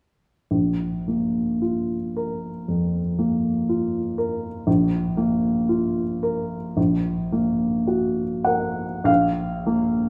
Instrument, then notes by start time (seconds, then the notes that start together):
upright piano
0.51 A#1
1.08 A#3
1.62 F4
2.17 A#4
2.68 F2
3.19 A#3
3.69 F4
4.18 A#4
4.67 A#1
5.17 A#3
5.69 F4
6.23 A#4
6.77 A#1
7.32 A#3
7.87 F#4
8.45 A#4 F#5
9.04 A#1 F5
9.66 A#3